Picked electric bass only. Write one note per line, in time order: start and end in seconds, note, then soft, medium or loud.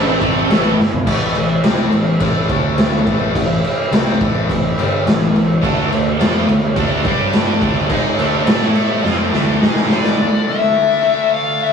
0.00 0.16 A1 loud
0.22 0.45 A1 medium
0.50 0.73 A1 medium
0.79 1.02 G1 loud
1.07 1.33 A1 loud
1.36 1.62 A1 medium
1.64 1.91 C2 loud
1.93 2.19 A1 medium
2.21 2.47 A1 loud
2.49 3.02 D2 medium
3.07 3.33 A1 loud
3.36 3.62 A1 medium
3.91 4.18 C2 medium
4.21 4.47 A1 medium
4.50 4.76 A1 medium
4.77 5.04 G1 loud
5.06 5.33 A1 medium
5.35 5.61 A1 medium
5.63 5.89 D2 loud
5.93 6.18 D2 medium
6.21 6.47 F2 loud
6.48 6.75 D2 medium
6.77 7.03 D2 loud
7.04 7.57 G2 loud
7.62 7.88 D2 loud
7.90 8.17 G#2 loud
8.18 8.45 D2 loud
8.48 9.00 A2 loud
9.04 9.30 F2 medium
9.33 9.59 D2 medium
9.61 10.13 G#2 loud